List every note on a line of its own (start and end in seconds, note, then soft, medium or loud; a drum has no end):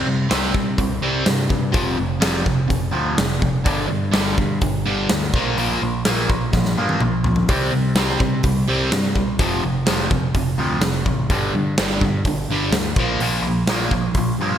0.06 0.28 C3 medium
0.06 0.27 C3 medium
0.06 0.29 G3 medium
0.29 0.52 C2 medium
0.29 0.52 C3 medium
0.29 0.53 G3 medium
0.29 0.54 C4 loud
0.29 snare loud
0.29 open hi-hat medium
0.53 0.76 C3 medium
0.53 0.75 C3 medium
0.53 0.76 G3 medium
0.53 kick medium
0.78 0.99 C2 medium
0.78 1.01 C3 medium
0.78 1.01 G3 medium
0.78 kick medium
0.78 open hi-hat medium
1.01 1.22 C2 medium
1.01 1.24 C3 medium
1.01 1.24 G3 medium
1.01 1.26 C4 loud
1.25 1.47 G2 medium
1.25 1.48 C3 medium
1.25 1.48 G3 medium
1.25 snare loud
1.25 open hi-hat medium
1.49 1.71 G2 medium
1.49 1.71 C3 medium
1.49 1.72 G3 medium
1.49 kick medium
1.72 1.95 F1 medium
1.72 1.96 F2 medium
1.72 1.96 C3 medium
1.72 1.97 F3 loud
1.72 kick loud
1.72 open hi-hat medium
1.97 2.19 F1 medium
1.97 2.19 F2 medium
1.97 2.20 C3 medium
2.20 2.43 F1 medium
2.20 2.44 F2 medium
2.20 2.44 C3 medium
2.20 2.45 F3 medium
2.20 snare loud
2.20 open hi-hat soft
2.45 2.67 F1 medium
2.45 2.67 F2 medium
2.45 2.67 C3 medium
2.45 kick medium
2.68 2.90 F1 medium
2.68 2.90 F2 medium
2.68 2.91 C3 medium
2.68 kick medium
2.68 open hi-hat medium
2.91 3.15 D2 medium
2.91 3.16 F2 medium
2.91 3.16 C3 medium
2.91 3.16 F3 loud
3.17 3.39 F1 medium
3.17 3.39 F2 medium
3.17 3.39 C3 medium
3.17 snare loud
3.17 open hi-hat soft
3.40 3.62 F1 medium
3.40 3.63 F2 medium
3.40 3.63 C3 medium
3.40 kick medium
3.65 3.87 G1 medium
3.65 3.87 G2 medium
3.65 3.87 D3 medium
3.65 3.89 G3 loud
3.65 kick loud
3.65 open hi-hat soft
3.88 4.11 G2 medium
3.88 4.11 D3 medium
4.12 4.34 G1 medium
4.12 4.36 G2 medium
4.12 4.36 D3 loud
4.12 4.36 G3 loud
4.12 snare loud
4.12 open hi-hat medium
4.37 4.60 G2 medium
4.37 4.58 G2 medium
4.37 4.60 D3 medium
4.37 kick medium
4.61 4.82 G1 medium
4.61 4.84 G2 medium
4.61 4.84 D3 medium
4.61 kick medium
4.61 open hi-hat medium
4.86 5.07 G1 medium
4.86 5.09 G2 medium
4.86 5.09 D3 loud
4.86 5.09 G3 loud
5.10 5.31 D2 medium
5.10 5.32 G2 medium
5.10 5.32 D3 medium
5.10 snare loud
5.10 open hi-hat medium
5.33 5.54 A#1 medium
5.33 5.57 A#2 medium
5.33 5.58 F3 medium
5.33 5.58 A#3 medium
5.33 kick loud
5.57 5.77 A#1 medium
5.57 5.81 A#2 medium
5.57 5.81 F3 loud
5.57 5.81 A#3 medium
5.57 open hi-hat medium
5.82 6.02 A#1 medium
5.82 6.04 A#2 medium
5.82 6.04 F3 medium
6.05 6.26 A#1 medium
6.05 6.28 A#2 medium
6.05 6.29 F3 medium
6.05 6.29 A#3 loud
6.05 snare loud
6.05 open hi-hat medium
6.29 6.49 A#1 medium
6.29 6.51 A#2 medium
6.29 6.52 F3 medium
6.29 kick medium
6.53 6.74 A#1 medium
6.53 6.75 A#2 medium
6.53 6.75 F3 medium
6.53 kick medium
6.53 snare medium
6.65 snare medium
6.76 6.97 G2 medium
6.76 7.00 A#2 medium
6.76 7.00 F3 medium
6.76 7.01 A#3 medium
6.89 high tom medium
7.00 7.21 A#1 medium
7.00 7.23 A#2 medium
7.00 7.23 F3 medium
7.00 mid tom medium
7.23 7.44 A#1 medium
7.23 7.47 A#2 medium
7.23 7.47 F3 medium
7.23 floor tom medium
7.36 floor tom medium
7.49 7.69 C2 medium
7.49 7.71 C3 medium
7.49 7.72 G3 loud
7.49 7.72 C4 medium
7.49 kick loud
7.49 open hi-hat medium
7.72 7.94 C3 medium
7.72 7.93 C3 medium
7.72 7.94 G3 medium
7.95 8.16 C2 medium
7.95 8.19 C3 medium
7.95 8.19 G3 medium
7.95 8.20 C4 medium
7.95 snare loud
7.95 open hi-hat soft
8.20 8.42 C3 medium
8.20 8.41 C3 medium
8.20 8.42 G3 medium
8.20 kick medium
8.43 8.64 C2 medium
8.43 8.66 C3 medium
8.43 8.66 G3 medium
8.43 kick medium
8.43 open hi-hat medium
8.68 8.89 C2 medium
8.68 8.90 C3 medium
8.68 8.90 G3 medium
8.68 8.91 C4 loud
8.91 9.12 G2 medium
8.91 9.13 C3 medium
8.91 9.13 G3 medium
8.91 snare loud
8.91 open hi-hat medium
9.15 9.36 C2 medium
9.15 9.38 C3 medium
9.15 9.38 G3 medium
9.15 kick medium
9.39 9.59 F1 medium
9.39 9.62 F2 loud
9.39 9.63 C3 medium
9.39 9.63 F3 loud
9.39 kick loud
9.39 open hi-hat medium
9.64 9.84 F1 medium
9.64 9.85 F2 medium
9.64 9.85 C3 medium
9.86 10.08 F1 medium
9.86 10.09 F2 medium
9.86 10.09 C3 medium
9.86 10.10 F3 medium
9.86 snare loud
9.86 open hi-hat medium
10.11 10.31 F1 medium
10.11 10.33 F2 medium
10.11 10.32 C3 medium
10.11 kick medium
10.34 10.55 F1 medium
10.34 10.56 F2 medium
10.34 10.57 C3 medium
10.34 kick medium
10.34 open hi-hat medium
10.58 10.78 D2 medium
10.58 10.81 F2 medium
10.58 10.81 C3 medium
10.58 10.82 F3 loud
10.81 11.02 F1 medium
10.81 11.04 F2 medium
10.81 11.04 C3 medium
10.81 snare loud
10.81 open hi-hat medium
11.06 11.26 A1 medium
11.06 11.28 F2 medium
11.06 11.29 C3 medium
11.06 kick medium
11.30 11.50 G1 medium
11.30 11.53 G2 medium
11.30 11.53 D3 medium
11.30 11.53 G3 loud
11.30 kick loud
11.30 open hi-hat medium
11.55 11.75 G2 medium
11.55 11.76 G2 medium
11.55 11.76 D3 medium
11.78 11.99 G1 medium
11.78 12.01 G2 medium
11.78 12.01 D3 medium
11.78 12.01 G3 loud
11.78 snare loud
11.78 open hi-hat soft
12.01 12.22 G2 medium
12.01 12.25 G2 medium
12.01 12.25 D3 medium
12.01 kick medium
12.25 12.45 G1 medium
12.25 12.48 G2 medium
12.25 12.48 D3 medium
12.25 kick medium
12.25 open hi-hat medium
12.49 12.69 G1 medium
12.49 12.72 G2 medium
12.49 12.73 D3 loud
12.49 12.73 G3 loud
12.72 12.92 D2 medium
12.72 12.95 G2 medium
12.72 12.96 D3 medium
12.72 snare loud
12.72 open hi-hat medium
12.96 13.17 A#1 medium
12.96 13.20 A#2 medium
12.96 13.20 F3 medium
12.96 13.21 A#3 medium
12.96 kick loud
13.19 13.40 A#1 loud
13.19 13.44 A#2 medium
13.19 13.44 F3 medium
13.19 13.44 A#3 loud
13.19 open hi-hat medium
13.42 13.63 A#1 medium
13.47 13.67 A#2 medium
13.47 13.67 F3 medium
13.66 13.87 A#1 medium
13.66 13.91 A#2 medium
13.66 13.91 F3 loud
13.66 snare loud
13.66 open hi-hat medium
13.70 13.92 A#3 medium
13.91 14.12 A#1 medium
13.91 14.14 A#2 medium
13.91 14.14 F3 medium
13.91 kick medium
14.14 14.35 A#1 medium
14.14 14.38 A#2 medium
14.14 14.38 F3 medium
14.14 kick medium
14.14 open hi-hat medium
14.39 14.58 G2 medium
14.39 14.58 A#2 medium
14.39 14.58 F3 loud
14.39 14.58 A#3 loud